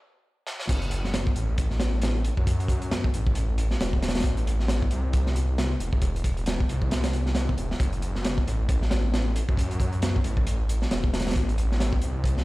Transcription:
0.47 snare
0.59 snare
0.69 F#1, kick, closed hi-hat, crash
0.82 closed hi-hat
0.91 closed hi-hat
1.05 snare
1.14 snare, closed hi-hat
1.27 kick
1.36 A1, closed hi-hat
1.58 kick, closed hi-hat
1.71 snare
1.80 snare, closed hi-hat
2.02 snare, closed hi-hat
2.25 closed hi-hat
2.37 F#2, kick
2.47 kick, closed hi-hat
2.60 closed hi-hat
2.68 kick, closed hi-hat
2.82 closed hi-hat
2.91 snare, closed hi-hat
3.04 kick
3.14 A1, closed hi-hat
3.27 kick
3.35 closed hi-hat
3.58 closed hi-hat
3.71 snare
3.80 E1, snare, closed hi-hat
3.93 kick
4.02 snare, closed hi-hat
4.08 snare, closed hi-hat
4.15 snare, closed hi-hat
4.20 snare, closed hi-hat
4.24 A1, kick, closed hi-hat
4.37 closed hi-hat
4.47 closed hi-hat
4.60 snare
4.68 snare, closed hi-hat
4.82 kick
4.91 C2, closed hi-hat
5.13 kick, closed hi-hat
5.27 snare
5.36 closed hi-hat
5.58 snare, closed hi-hat
5.80 E1, closed hi-hat
5.93 kick
6.02 kick, closed hi-hat
6.16 closed hi-hat
6.24 kick, closed hi-hat
6.37 closed hi-hat
6.46 snare, closed hi-hat
6.60 kick
6.69 C2, closed hi-hat
6.82 kick
6.91 snare, closed hi-hat
7.04 snare, closed hi-hat
7.13 closed hi-hat
7.26 snare
7.35 snare, closed hi-hat
7.49 kick
7.58 E1, closed hi-hat
7.71 snare
7.80 F#1, kick, closed hi-hat
7.93 closed hi-hat
8.02 closed hi-hat
8.15 snare
8.25 snare, closed hi-hat
8.38 kick
8.46 A1, closed hi-hat
8.69 kick, closed hi-hat
8.82 snare
8.91 snare, closed hi-hat
9.14 snare, closed hi-hat
9.36 closed hi-hat
9.49 F#2, kick
9.57 kick, closed hi-hat
9.71 closed hi-hat
9.80 kick, closed hi-hat
9.93 closed hi-hat
10.02 snare, closed hi-hat
10.16 kick
10.24 A1, closed hi-hat
10.37 kick
10.47 closed hi-hat
10.69 closed hi-hat
10.82 snare
10.91 E1, snare, closed hi-hat
11.04 kick
11.14 snare, closed hi-hat
11.19 snare, closed hi-hat
11.27 snare, closed hi-hat
11.31 snare, closed hi-hat
11.36 A1, kick, closed hi-hat
11.49 closed hi-hat
11.58 closed hi-hat
11.72 snare
11.80 snare, closed hi-hat
11.93 kick
12.02 C2, closed hi-hat
12.24 kick, closed hi-hat
12.37 snare

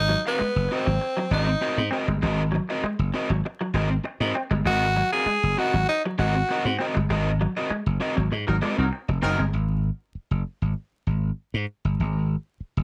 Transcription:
Already playing: G#1 D#4
0.09 F#3, muted overdriven electric guitar stroke
0.25 B3 C4 F#4 A#4 F5, muted clean electric guitar stroke
0.39 G#3, muted overdriven electric guitar stroke, muted slap bass stroke
0.56 F#1
0.69 C4 F#4 A#4 D#5, muted clean electric guitar stroke
0.74 C4
0.86 G#1 F#3, muted overdriven electric guitar stroke
1.01 muted clean electric guitar stroke
1.17 F#3, muted overdriven electric guitar stroke
1.31 G#1 G#3 C4 D#4 F#4 A#4 D#5
1.48 muted overdriven electric guitar stroke
1.61 C4 F#4 A#4 D#5, muted clean electric guitar stroke
1.78 G#2, muted overdriven electric guitar stroke
1.91 C4 F#4 A#4 D#5
2.08 G1 G#3, muted overdriven electric guitar stroke
2.22 G#1 G#3 C4 F#4 A#4 D#5
2.52 F#3, muted overdriven electric guitar stroke
2.69 C4 F#4 A#4 D#5, muted clean electric guitar stroke
2.83 G#3, muted slap bass stroke, muted overdriven electric guitar stroke
2.99 F#1
3.14 C4 F#4 A#4 D#5, muted clean electric guitar stroke
3.30 G#1 F#3, muted overdriven electric guitar stroke
3.45 muted clean electric guitar stroke, muted overdriven electric guitar stroke
3.61 F#3, muted overdriven electric guitar stroke
3.74 G#1 G#3 C4 F#4 A#4 D#5
3.91 muted overdriven electric guitar stroke
4.04 muted overdriven electric guitar stroke, muted clean electric guitar stroke
4.20 G#2 C4 F#4 A#4 D#5
4.35 C4, muted overdriven electric guitar stroke
4.51 G1 G#3, muted overdriven electric guitar stroke
4.66 G#1 G#3 C4 F#4 A#4 D#5
4.96 F#3, muted overdriven electric guitar stroke
5.12 C4 F#4 G#4 A#4 F5, muted clean electric guitar stroke
5.26 G#3, muted slap bass stroke, muted overdriven electric guitar stroke
5.43 F#1
5.57 C4 F#4 A#4 D#5, muted clean electric guitar stroke
5.74 G#1 F#3, muted overdriven electric guitar stroke
5.89 D#4, muted clean electric guitar stroke
6.05 F#3, muted overdriven electric guitar stroke
6.18 G#1 G#3 C4 F#4 A#4 D#5
6.36 muted overdriven electric guitar stroke
6.49 C4 F#4 A#4 D#5, muted clean electric guitar stroke
6.65 G#2, muted overdriven electric guitar stroke
6.79 C4 F#4 A#4 D#5
6.95 G1 G#3, muted overdriven electric guitar stroke
7.10 G#1 G#3 C4 F#4 A#4 D#5
7.41 F#3, muted overdriven electric guitar stroke
7.57 C4 F#4 A#4 D#5, muted clean electric guitar stroke
7.70 G#3, muted slap bass stroke, muted overdriven electric guitar stroke
7.86 F#1
8.00 C4 F#4 A#4 D#5, muted clean electric guitar stroke
8.17 G#1 F#3, muted overdriven electric guitar stroke
8.32 G#2, muted overdriven electric guitar stroke, muted clean electric guitar stroke
8.47 G#1 F#3 D#4 A#4, muted overdriven electric guitar stroke
8.62 G#3 C4 F#4 A#4 D#5
8.78 C2 F#3 D#4 A#4, muted overdriven electric guitar stroke
8.93 muted clean electric guitar stroke
9.08 F1, muted overdriven electric guitar stroke
9.22 F#1 F#3 C4 D#4 F#4 A#4 D#5
9.38 G1 G#3, muted overdriven electric guitar stroke
9.53 G#1
10.15 muted slap bass stroke
10.31 F#1
10.62 G#1
11.07 G#1
11.54 G#2
11.85 G1
12.00 G#1
12.60 muted slap bass stroke
12.77 F#1

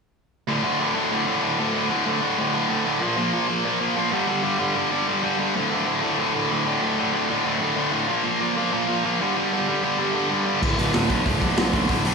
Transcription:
0.48 D2 A2 D3
0.64 D2 A2 D3
0.79 D2 A2 D3
0.95 D2 A2 D3
1.12 D2 A2 D3
1.27 D2 A2 D3
1.42 D2 A2 D3
1.59 D2 A2 D3
1.75 D2 A2 D3
1.90 D2 A2 D3
2.06 D2 A2 D3
2.21 D2 A2 D3
2.38 D2 A2 D3
2.53 D2 A2 D3
2.69 D2 A2 D3
2.85 D2 A2 D3
3.01 A#2 F3 A#3
3.17 A#2 F3 A#3
3.33 A#2 F3 A#3
3.48 A#2 F3 A#3
3.65 A#2 F3 A#3
3.80 A#2 F3 A#3
3.96 A#2 F3 A#3
4.11 G2 D3 G3
4.27 G2 D3 G3
4.43 G2 D3 G3
4.59 G2 D3 G3
4.75 G2 D3 G3
4.90 G2 D3 G3
5.07 G2 D3 G3
5.22 G2 D3 G3
5.38 G2 D3 G3
5.55 D2 A2 D3
5.71 D2 A2 D3
5.85 D2 A2 D3
6.02 D2 A2 D3
6.18 D2 A2 D3
6.34 D2 A2 D3
6.50 D2 A2 D3
6.66 D2 A2 D3
6.82 D2 A2 D3
6.97 D2 A2 D3
7.13 D2 A2 D3
7.29 D2 A2 D3
7.45 D2 A2 D3
7.61 D2 A2 D3
7.76 D2 A2 D3
7.92 D2 A2 D3
8.08 A#2 F3 A#3
8.24 A#2 F3 A#3
8.41 A#2 F3 A#3
8.57 A#2 F3 A#3
8.72 A#2 F3 A#3
8.88 A#2 F3 A#3
9.04 A#2 F3 A#3
9.20 G2 D3 G3
9.36 G2 D3 G3
9.52 G2 D3 G3
9.68 G2 D3 G3
9.83 G2 D3 G3
9.99 G2 D3 G3
10.15 G2 D3 G3
10.31 G2 D3 G3
10.46 G2 D3 G3
10.62 D1 D2 A2 D3, kick, crash
10.77 D1 D2 A2 D3, open hi-hat
10.92 D1 D2 A2 D3, snare, open hi-hat
11.09 B1 D2 A2 D3, kick, open hi-hat
11.26 D1 D2 A2 D3, kick, open hi-hat
11.41 B1 D2 A2 D3, kick, open hi-hat
11.57 B1 D2 A2 D3, snare, open hi-hat
11.73 B1 D2 A2 D3, kick, open hi-hat
11.89 D1 D2 A2 D3, kick, open hi-hat
12.05 B1 D2 A2 D3, open hi-hat

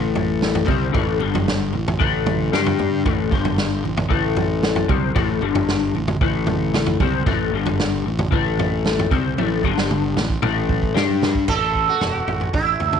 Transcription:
Already playing: A1 A2 E3 A3
0.15 floor tom, high conga
0.42 snare
0.55 floor tom, high conga
0.66 C2 C3 G3 C4, kick, mid tom, high conga, low conga
0.92 A1 A2 E3 A3, kick, floor tom, low conga
1.20 G1 G2 D3 G3, low conga
1.34 floor tom, high conga
1.48 snare
1.73 A1 A2 E3, low conga
1.88 floor tom, mid tom
1.99 A1 A2 E3 A3, kick
2.26 floor tom, mid tom, high conga
2.52 G2 G3 D4 G4, snare, mid tom
2.66 floor tom, high conga
2.79 mid tom, high conga, low conga
3.05 A1 A2 E3 A3, kick, floor tom
3.31 G1 G2 D3 G3, kick, low conga
3.45 floor tom, high conga
3.58 snare
3.84 A1 A2 E3, low conga
3.97 floor tom, mid tom
4.09 A1 A2 E3 A3, kick
4.36 floor tom, high conga
4.63 snare
4.76 floor tom, high conga
4.88 C2 C3 G3 C4, kick, mid tom, high conga, low conga
5.15 A1 A2 E3 A3, kick, floor tom
5.41 G1 G2 D3 G3, low conga
5.55 floor tom, high conga
5.68 snare
5.93 A1 A2 E3, low conga
6.08 floor tom, mid tom
6.21 A1 A2 E3 A3, kick
6.47 floor tom, mid tom, high conga
6.74 snare, mid tom
6.86 floor tom, high conga
7.00 C2 C3 G3 C4, kick, mid tom, high conga, low conga
7.26 A1 A2 E3 A3, kick, floor tom
7.51 G1 G2 D3 G3
7.66 floor tom, high conga
7.80 snare
8.05 A1 A2 E3
8.19 floor tom, mid tom
8.31 A1 A2 E3 A3, kick
8.58 floor tom, high conga
8.86 snare
8.98 floor tom, high conga
9.11 C2 C3 G3 C4, kick, mid tom, high conga, low conga
9.37 A1 A2 E3 A3, high tom, low conga
9.63 G1 G2 D3 G3, kick, high conga, low conga
9.78 snare, high conga
9.91 mid tom
10.16 A1 A2 E3, snare, low conga
10.30 kick
10.42 A1 A2 E3 A3, mid tom
10.69 kick, high conga
10.83 kick
10.94 G2 G3 D4 G4, snare
11.09 high conga
11.22 snare, high conga, low conga
11.35 kick
11.48 A1 A4, kick, floor tom, crash
11.75 kick
11.89 F#4
12.01 E1, snare, floor tom
12.27 A1, floor tom
12.41 floor tom
12.53 A1 E4, kick, floor tom
12.80 D2, floor tom
12.93 floor tom, mid tom

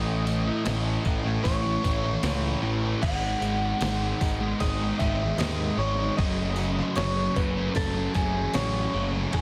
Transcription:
Already playing: A1 A2 E3 A3 C#4 E4 D#5
0.25 A2 E3 A3 C#4 E4, tambourine
0.45 E3 A3
0.64 A1 A2 E3 A3 C#4 E4, snare, open hi-hat, tambourine
0.84 A3 C#4 E4
1.03 A1 A2 E3 A3, muted overdriven electric guitar stroke, kick, tambourine
1.23 A3 C#4 E4, muted distorted electric guitar stroke
1.43 A1 A2 E3 A3 C#5, kick, open hi-hat, tambourine
1.62 E3 A3 C#4 E4
1.82 A1 A2 E3 A3 C#4 E4, kick, tambourine
2.03 A3 C#4 E4, muted distorted electric guitar stroke
2.23 C#2 A2 E3 A3 C#4 E4, snare, open hi-hat, tambourine
2.43 A3 C#4 E4
2.62 A1 A2 E3 A3
2.82 E3 A3 C#4 E4
3.02 G#1 G#2 D#3 G#3 B3 D#4 F#5, kick, tambourine, crash
3.40 G#1 G#2 D#3 G#3, tambourine
3.44 B3 D#4
3.61 D#3 G#3
3.81 G#1 G#2 D#3 G#3 B3, snare, open hi-hat, tambourine
3.85 D#4
4.02 G#3 B3 D#4
4.20 G#1 G#2 D#3 G#3, muted overdriven electric guitar stroke, kick, tambourine
4.40 G#3 B3 D#4, muted distorted electric guitar stroke
4.60 G#1 G#2 D#3 G#3 D#5, kick, open hi-hat, tambourine
4.79 D#3 G#3 B3 D#4
4.84 G#3
4.99 G#1 G#2 D#3 G#3 B3 D#4 E5, kick, tambourine
5.19 G#3 B3 D#4, muted distorted electric guitar stroke
5.38 D#2 G#2 D#3 G#3 B3 D#4 D#5, snare, open hi-hat, tambourine
5.58 G#3 B3 D#4
5.77 G#1 G#2 D#3 G#3 C#5
5.97 D#3 G#3 B3 D#4
6.17 F#1 F#2 C#3 F#3 A3 C#4 D#5, kick, open hi-hat, tambourine
6.56 F#2 C#3 F#3 A3 C#4, tambourine
6.76 C#3 F#3, snare
6.96 F#1 F#2 C#3 F#3 A3 C#5, snare, open hi-hat, tambourine
7.00 C#4
7.16 F#3 A3 C#4
7.35 F#1 F#2 C#3 F#3 B4, muted overdriven electric guitar stroke, kick, tambourine
7.55 F#3 A3 C#4, muted distorted electric guitar stroke
7.75 F#1 F#2 C#3 F#3 A4, kick, open hi-hat, tambourine
7.94 C#3 F#3 A3 C#4
8.14 F#1 F#2 C#3 F#3 A3 C#4 G#4, kick, tambourine
8.34 F#3 A3 C#4, muted distorted electric guitar stroke
8.54 A1 F#2 C#3 F#3 A3 C#4 C#5, snare, open hi-hat, tambourine
8.75 F#3 A3 C#4
8.93 F#1 F#2 C#3 F#3
9.13 C#3 F#3 A3 C#4
9.17 F#3
9.33 A1 A2 E3 A3 C#4 E4 G#4, kick, crash, tambourine

